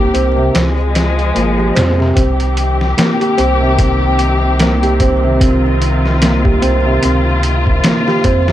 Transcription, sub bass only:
Already playing: C2
0.14 C2
0.55 C#2
1.36 G#1
1.77 F2
2.17 C2
3.39 C2
6.63 C2
7.04 C#2
8.25 F2

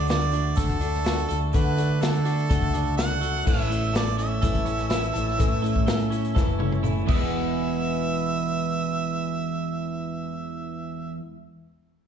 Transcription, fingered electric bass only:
Already playing: D2
0.58 C#2
0.69 D2
1.31 D2
1.55 D3
2.51 D2
2.62 C#2
3.47 A1
4.43 F#1
4.55 A1
5.16 A1
5.40 A2
6.37 A1
6.47 F#1
7.09 E1

